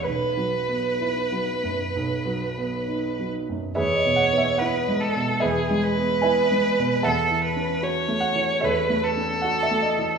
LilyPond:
<<
  \new Staff \with { instrumentName = "Violin" } { \time 4/4 \key e \major \tempo 4 = 73 b'2.~ b'8 r8 | cis''4 b'8 a'8 gis'8 b'4. | a'8 b'8 cis''4 b'8 a'4. | }
  \new Staff \with { instrumentName = "Grand piano" } { \time 4/4 \key e \major b'2.~ b'8 r8 | <gis' b' e''>16 dis''16 fis''16 e''16 fis''4 <gis' b' e''>4 <b' e'' gis''>4 | <e'' fis'' a''>4. fis''8 <a' cis'' e''>4 fis''16 e''16 dis''8 | }
  \new Staff \with { instrumentName = "Grand piano" } { \clef bass \time 4/4 \key e \major \tuplet 3/2 { b,,8 fis8 b8 e'8 fis8 fis,8 b,,8 fis8 b8 dis'8 fis8 fis,8 } | \tuplet 3/2 { e,8 b,8 b8 e'8 gis8 b,8 e,8 gis8 b8 e'8 gis8 b,8 } | \tuplet 3/2 { e,8 e8 cis'8 fis'8 a8 e8 e,8 a8 cis'8 fis'8 a8 e8 } | }
>>